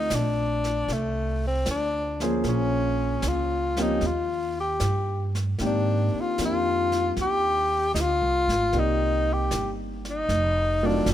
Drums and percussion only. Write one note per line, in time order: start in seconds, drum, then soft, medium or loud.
0.10 snare medium
0.10 hi-hat pedal medium
0.64 snare soft
0.88 brush sweep soft
0.88 snare soft
1.66 snare medium
1.66 hi-hat pedal soft
2.20 snare soft
2.44 brush sweep soft
2.44 snare soft
3.22 snare medium
3.22 hi-hat pedal soft
3.76 snare soft
4.01 brush sweep soft
4.01 snare soft
4.80 snare medium
4.80 hi-hat pedal soft
5.35 snare soft
5.59 brush sweep soft
5.59 snare soft
6.38 snare medium
6.38 hi-hat pedal medium
6.92 snare soft
7.16 brush sweep soft
7.16 snare soft
7.95 snare medium
7.95 hi-hat pedal medium
8.49 snare soft
8.73 brush sweep soft
8.73 snare soft
9.51 snare medium
9.51 hi-hat pedal medium
10.05 snare soft
10.29 brush sweep soft
10.29 snare soft
11.06 snare medium
11.06 hi-hat pedal medium